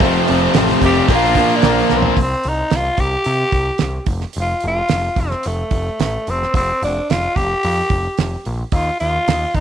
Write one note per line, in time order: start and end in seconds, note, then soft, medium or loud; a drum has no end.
0.00 0.17 F1 loud
0.00 0.54 F2 medium
0.00 0.28 C3 medium
0.00 1.08 F3 medium
0.00 0.28 F3 loud
0.00 0.29 F3 medium
0.00 0.23 A3 loud
0.00 1.08 A3 medium
0.00 0.30 A3 loud
0.00 0.23 C4 loud
0.00 1.09 C4 medium
0.00 0.29 C4 medium
0.00 0.30 C4 loud
0.00 0.23 F4 loud
0.00 1.08 F4 medium
0.00 0.30 F4 medium
0.00 0.23 A4 loud
0.00 0.28 A4 loud
0.00 kick loud
0.00 open hi-hat medium
0.00 cowbell medium
0.26 0.46 F1 medium
0.26 0.55 C3 medium
0.26 0.43 F3 medium
0.26 0.49 A3 medium
0.26 0.49 C4 medium
0.26 0.49 F4 medium
0.26 0.49 A4 loud
0.26 0.56 A4 medium
0.26 open hi-hat medium
0.31 0.41 A3 medium
0.31 0.40 C4 medium
0.31 0.55 C4 medium
0.31 0.56 F4 medium
0.41 0.56 F3 medium
0.41 0.57 A3 medium
0.41 0.57 C4 medium
0.54 0.73 A1 medium
0.54 1.08 F2 medium
0.54 0.81 C3 medium
0.54 1.10 F3 medium
0.54 0.82 F3 medium
0.54 0.76 A3 medium
0.54 0.77 C4 medium
0.54 1.10 C4 medium
0.54 0.77 F4 medium
0.54 1.11 F4 loud
0.54 0.77 A4 loud
0.54 1.11 A4 loud
0.54 snare loud
0.54 open hi-hat medium
0.54 cowbell medium
0.58 0.84 A3 medium
0.58 0.84 C4 loud
0.69 snare soft
0.81 0.99 F1 medium
0.81 1.08 C3 medium
0.81 0.97 F3 medium
0.81 1.04 A3 medium
0.81 0.96 A3 medium
0.81 1.04 C4 medium
0.81 1.04 F4 medium
0.81 1.04 A4 medium
0.81 kick medium
0.81 open hi-hat medium
0.81 cowbell medium
0.85 0.94 C4 medium
0.85 1.10 G4 loud
0.95 1.08 F3 medium
0.95 1.08 A3 medium
0.95 1.08 C4 medium
1.06 1.43 A#1 loud
1.06 1.34 A#2 medium
1.06 1.26 F3 loud
1.06 1.30 A#3 medium
1.06 2.17 A#3 medium
1.06 1.30 D4 medium
1.06 2.17 D4 medium
1.06 1.30 F4 medium
1.06 2.17 F4 medium
1.06 1.30 A#4 medium
1.06 kick loud
1.06 open hi-hat medium
1.06 cowbell medium
1.11 1.37 F3 medium
1.11 2.18 F3 medium
1.11 1.24 A#3 loud
1.11 1.38 A#3 medium
1.11 1.23 D4 loud
1.11 1.38 D4 medium
1.11 1.38 A#4 medium
1.15 1.57 F4 loud
1.24 1.35 F3 medium
1.24 1.37 A#3 medium
1.24 1.37 D4 medium
1.35 1.62 A#2 medium
1.35 1.51 F3 medium
1.35 1.58 A#3 loud
1.35 1.50 A#3 medium
1.35 1.59 D4 medium
1.35 1.48 D4 medium
1.35 1.59 F4 medium
1.35 1.59 A#4 loud
1.35 kick medium
1.35 open hi-hat medium
1.39 1.64 F3 soft
1.39 1.63 A#3 soft
1.39 1.65 D4 soft
1.39 1.64 A#4 medium
1.50 1.63 F3 medium
1.50 1.64 A#3 medium
1.50 1.65 D4 medium
1.56 1.67 D4 medium
1.62 1.81 A#1 loud
1.62 2.16 A#2 medium
1.62 1.91 A#2 medium
1.62 1.92 D3 medium
1.62 2.06 F3 medium
1.62 1.92 F3 medium
1.62 1.85 A#3 medium
1.62 1.90 A#3 medium
1.62 2.05 A#3 medium
1.62 1.85 D4 medium
1.62 2.03 D4 loud
1.62 1.90 D4 medium
1.62 1.85 F4 medium
1.62 1.85 A#4 loud
1.62 1.90 A#4 medium
1.62 snare loud
1.62 open hi-hat medium
1.62 cowbell medium
1.69 1.99 A#3 medium
1.90 2.08 B1 medium
1.90 2.19 F3 soft
1.90 2.13 A#3 medium
1.90 2.19 A#3 medium
1.90 2.18 D4 medium
1.90 2.13 D4 medium
1.90 2.13 F4 medium
1.90 2.19 A#4 medium
1.90 2.13 A#4 medium
1.90 snare medium
1.90 cowbell medium
1.97 2.21 C4 medium
2.03 2.17 A#3 medium
2.03 2.17 D4 medium
2.03 floor tom medium
2.07 2.18 F3 medium
2.17 2.34 C2 medium
2.17 kick loud
2.17 open hi-hat medium
2.22 2.50 C4 medium
2.44 2.62 C2 medium
2.44 open hi-hat medium
2.48 2.77 D#4 medium
2.70 2.89 C2 medium
2.70 snare loud
2.70 open hi-hat medium
2.76 3.02 F4 loud
2.97 3.15 C2 medium
2.97 4.09 G4 loud
2.97 kick medium
2.97 open hi-hat medium
3.24 3.43 C3 medium
3.24 open hi-hat medium
3.52 3.69 C2 medium
3.52 kick medium
3.52 open hi-hat medium
3.78 3.98 C2 medium
3.78 snare loud
3.78 open hi-hat medium
4.06 4.24 F1 medium
4.06 kick medium
4.06 open hi-hat soft
4.21 snare soft
4.33 4.53 F1 medium
4.33 open hi-hat medium
4.41 4.64 F4 medium
4.61 4.80 F1 medium
4.61 open hi-hat medium
4.67 5.22 F4 medium
4.89 5.08 F1 medium
4.89 snare loud
4.89 open hi-hat medium
5.16 5.33 F1 medium
5.16 5.48 C4 medium
5.16 kick medium
5.16 open hi-hat medium
5.31 snare soft
5.43 5.62 F1 loud
5.43 6.00 A3 medium
5.43 open hi-hat medium
5.71 5.88 F1 medium
5.71 kick medium
5.71 open hi-hat medium
6.00 6.16 A1 medium
6.00 6.31 A3 medium
6.00 snare loud
6.00 open hi-hat medium
6.27 6.44 F1 medium
6.27 6.56 C4 medium
6.27 open hi-hat medium
6.43 snare soft
6.54 6.71 F1 medium
6.54 6.81 C4 loud
6.54 kick loud
6.54 open hi-hat medium
6.82 6.98 F1 medium
6.82 7.12 D4 medium
6.82 open hi-hat medium
7.10 7.26 F1 medium
7.10 7.38 F4 medium
7.10 snare loud
7.10 open hi-hat medium
7.36 7.53 F1 medium
7.36 8.45 G4 loud
7.36 kick medium
7.36 open hi-hat medium
7.63 7.81 F2 medium
7.63 open hi-hat medium
7.90 8.07 F1 medium
7.90 kick medium
7.90 open hi-hat medium
8.18 8.35 F1 medium
8.18 snare loud
8.18 open hi-hat medium
8.45 8.62 A#1 medium
8.45 open hi-hat soft
8.72 8.89 D#2 medium
8.72 8.99 F4 medium
8.72 kick loud
8.72 open hi-hat medium
9.00 9.17 D#2 medium
9.00 9.56 F4 loud
9.00 open hi-hat medium
9.28 9.44 D#2 medium
9.28 snare loud
9.28 open hi-hat medium
9.55 9.60 D#2 medium
9.55 9.60 D#4 medium
9.55 kick medium
9.55 open hi-hat medium